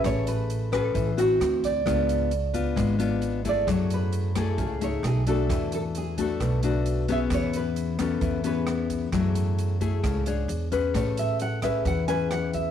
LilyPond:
<<
  \new Staff \with { instrumentName = "Nylon-string guitar" } { \time 4/4 \key a \major \tempo 4 = 132 cis''8 b'4 a'4 fis'4 d''8~ | d''2~ d''8 r4 d''8 | cis''8 b'4 a'8 gis'8 cis''8 gis'8 a'8~ | a'8 a'8 gis'8 a'4 r4 e''8 |
cis''8 b'4 a'4 b'4.~ | b'2. r4 | cis''8 e''8 fis''8 e''8 fis''8 gis''8 fis''8 e''8 | }
  \new Staff \with { instrumentName = "Nylon-string guitar" } { \time 4/4 \key a \major << { <cis' gis' b'>4. <cis' b'>4 <c' e' fis'>4. | <b d' eis'>4 r8 <b d' eis'>4 <b d' eis'>4 <a e' gis'>8~ | <a e' gis'>4. <a e' gis'>4 <a dis' gis'>4 <a d' fis'>8~ | <a d' fis'>4. <a d' fis'>4 <a d' fis'>4 <b cis' gis'>8~ |
<b cis' gis'>4. <b cis'>4 <b cis' gis'>4. | <a e' gis'>4. <a e' gis'>4 <d' gis' cis''>4 <cis' gis' b'>8~ | <cis' gis' b'>4. <cis' gis' b'>4 <cis' gis' b'>4. | } \\ { a2 e4 r4 | cis2 gis2 | fis2 cis4 r4 | e2 b,2 |
e2 e2 | fis2 cis4 r4 | a2 e2 | } >> }
  \new Staff \with { instrumentName = "Upright bass" } { \clef bass \time 4/4 \key a \major a,,2 a,,4 d,4 | cis,2 gis,,2 | fis,2 cis,4 b,,4 | e,2 b,,2 |
e,2 e,2 | fis,2 cis,4 e,4 | a,,2 e,2 | }
  \new DrumStaff \with { instrumentName = "Drums" } \drummode { \time 4/4 <hh bd ss>8 hh8 hh8 <hh bd ss>8 <hh bd>8 hh8 <hh ss>8 <hh bd>8 | <hh bd ss>8 hh8 hh8 <hh bd>8 <hh bd ss>8 hh8 hh8 <hh bd>8 | <hh bd ss>8 hh8 hh8 <hh bd ss>8 <hh bd>8 hh8 <hh ss>8 <hh bd>8 | <hh bd ss>8 hh8 hh8 <hh bd>8 <hh bd ss>8 hh8 hh8 <hh bd>8 |
<hh bd ss>8 hh8 hh8 <hh bd ss>8 <hh bd>8 hh8 <hh ss>8 <hh bd>8 | <hh bd ss>8 hh8 hh8 <hh bd>8 <hh bd ss>8 hh8 hh8 <hh bd>8 | <hh bd ss>8 hh8 hh8 <hh bd ss>8 <hh bd>8 hh8 <hh ss>8 <hh bd>8 | }
>>